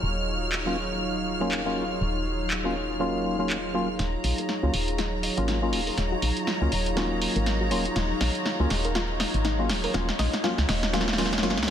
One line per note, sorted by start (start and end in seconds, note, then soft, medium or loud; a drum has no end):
0.00 1.99 D#1 medium
0.00 3.95 F#3 medium
0.00 3.95 D#4 medium
0.00 11.70 D#4 medium
0.00 3.95 F4 medium
0.00 11.70 G#4 medium
0.00 3.95 C#5 medium
0.00 11.70 C#5 medium
0.00 11.70 F5 medium
0.00 4.00 F6 medium
0.52 clap loud
0.66 0.76 F#3 medium
0.66 0.76 A#3 medium
0.66 0.77 C#4 medium
0.66 0.77 F4 medium
1.40 1.62 F#3 medium
1.40 1.62 A#3 medium
1.40 1.62 C#4 medium
1.40 1.62 F4 loud
1.51 clap loud
1.65 1.84 F#3 medium
1.65 1.84 A#3 medium
1.65 1.84 C#4 medium
1.65 1.84 F4 medium
2.01 3.97 D#1 medium
2.51 clap loud
2.64 2.75 F#3 medium
2.64 2.75 A#3 medium
2.64 2.75 C#4 medium
2.64 2.75 F4 medium
3.00 3.36 F#3 medium
3.00 3.36 A#3 medium
3.00 3.36 C#4 medium
3.00 3.37 F4 loud
3.39 3.57 F#3 medium
3.39 3.57 A#3 medium
3.39 3.57 C#4 medium
3.39 3.58 F4 medium
3.50 clap loud
3.74 3.88 F#3 medium
3.74 3.88 A#3 medium
3.74 3.88 C#4 medium
3.74 3.89 F4 medium
3.99 4.16 D#1 loud
3.99 11.70 F#3 medium
3.99 11.70 D#4 medium
3.99 4.08 D#4 medium
3.99 11.70 F4 medium
3.99 11.70 C#5 medium
3.99 11.70 A#5 medium
3.99 snare soft
3.99 closed hi-hat medium
4.24 4.33 A#1 medium
4.24 open hi-hat loud
4.38 4.44 A#4 medium
4.38 closed hi-hat medium
4.49 snare soft
4.63 4.70 C#2 medium
4.63 4.73 F#3 medium
4.63 4.73 A#3 medium
4.63 4.73 C#4 medium
4.63 4.73 F4 medium
4.63 4.67 F#4 medium
4.74 5.29 D#1 medium
4.74 open hi-hat loud
4.88 closed hi-hat medium
4.98 5.03 F4 loud
4.98 snare soft
4.98 closed hi-hat medium
5.23 5.32 D#5 medium
5.23 open hi-hat loud
5.37 5.74 G#1 medium
5.37 5.59 F#3 medium
5.37 5.59 A#3 medium
5.37 5.59 C#4 medium
5.37 5.59 F4 loud
5.37 closed hi-hat medium
5.48 5.56 D#4 medium
5.48 snare medium
5.48 closed hi-hat medium
5.62 5.80 F#3 medium
5.62 5.80 A#3 medium
5.62 5.81 C#4 medium
5.62 5.81 F4 medium
5.73 5.90 D#1 medium
5.73 open hi-hat loud
5.87 5.93 A#4 medium
5.87 open hi-hat medium
5.98 6.14 D#1 medium
5.98 snare medium
5.98 closed hi-hat medium
6.12 6.16 F#4 medium
6.22 6.31 A#1 medium
6.22 open hi-hat loud
6.37 closed hi-hat soft
6.47 6.52 F4 medium
6.47 snare medium
6.61 6.68 C#2 loud
6.61 6.71 F#3 medium
6.61 6.71 A#3 medium
6.61 6.72 C#4 medium
6.61 6.72 F4 medium
6.72 7.27 D#1 medium
6.72 6.80 D#5 medium
6.72 open hi-hat loud
6.86 closed hi-hat medium
6.96 7.68 F#3 medium
6.96 7.68 A#3 medium
6.96 7.69 C#4 medium
6.96 7.05 D#4 medium
6.96 7.69 F4 loud
6.96 snare medium
6.96 closed hi-hat medium
7.22 open hi-hat loud
7.36 7.73 G#1 medium
7.36 7.42 A#4 medium
7.36 closed hi-hat medium
7.46 snare medium
7.46 closed hi-hat medium
7.61 7.64 F#4 medium
7.71 7.88 D#1 medium
7.71 7.85 F#3 medium
7.71 7.85 A#3 medium
7.71 7.85 C#4 medium
7.71 7.85 F4 medium
7.71 open hi-hat loud
7.85 closed hi-hat medium
7.96 8.13 D#1 loud
7.96 8.01 F4 medium
7.96 snare medium
7.96 closed hi-hat medium
8.21 8.30 A#1 medium
8.21 8.29 D#5 medium
8.21 snare medium
8.21 open hi-hat loud
8.35 closed hi-hat soft
8.45 8.54 D#4 medium
8.45 snare medium
8.59 8.66 C#2 loud
8.59 8.70 F#3 medium
8.59 8.70 A#3 medium
8.59 8.70 C#4 medium
8.59 8.70 F4 medium
8.70 9.26 D#1 loud
8.70 snare medium
8.70 open hi-hat loud
8.85 8.91 A#4 medium
8.85 closed hi-hat medium
8.95 9.00 F4 medium
8.95 snare medium
8.95 closed hi-hat medium
9.20 9.28 D#5 medium
9.20 snare medium
9.20 open hi-hat loud
9.34 9.71 G#1 medium
9.34 closed hi-hat soft
9.45 9.53 D#4 medium
9.45 snare medium
9.45 closed hi-hat medium
9.58 9.69 F#3 medium
9.58 9.69 A#3 medium
9.58 9.69 C#4 medium
9.58 9.69 F4 medium
9.69 9.86 D#1 medium
9.69 snare medium
9.69 open hi-hat loud
9.84 9.90 A#4 medium
9.84 open hi-hat medium
9.94 10.11 D#1 loud
9.94 10.08 F#3 medium
9.94 10.08 A#3 medium
9.94 10.08 C#4 medium
9.94 9.99 F4 loud
9.94 10.08 F4 medium
9.94 snare medium
9.94 closed hi-hat medium
10.09 snare medium
10.19 10.28 A#1 medium
10.19 10.27 D#5 medium
10.19 snare loud
10.19 open hi-hat loud
10.33 snare medium
10.33 closed hi-hat soft
10.43 10.57 F#3 medium
10.43 10.58 A#3 medium
10.43 10.58 C#4 medium
10.43 10.49 F4 loud
10.43 10.58 F4 medium
10.43 snare medium
10.58 10.65 C#2 medium
10.58 snare medium
10.69 11.45 D#1 loud
10.69 10.77 D#5 medium
10.69 snare loud
10.69 open hi-hat loud
10.83 snare medium
10.83 closed hi-hat medium
10.93 11.07 F#3 medium
10.93 11.07 A#3 medium
10.93 11.07 C#4 medium
10.93 10.98 F4 loud
10.93 11.08 F4 medium
10.93 snare loud
10.93 closed hi-hat medium
11.01 snare medium
11.08 snare medium
11.13 snare medium
11.18 11.32 F#3 medium
11.18 11.32 A#3 medium
11.18 11.32 C#4 medium
11.18 11.23 F4 loud
11.18 11.32 F4 medium
11.18 snare loud
11.18 open hi-hat loud
11.25 snare medium
11.33 snare medium
11.33 closed hi-hat medium
11.38 snare medium
11.42 11.59 F#1 medium
11.42 11.57 F#3 medium
11.42 11.57 A#3 medium
11.42 11.57 C#4 medium
11.42 11.48 F4 loud
11.42 11.57 F4 loud
11.42 snare loud
11.42 closed hi-hat medium
11.50 snare medium
11.57 11.70 C#2 medium
11.57 snare loud
11.63 snare loud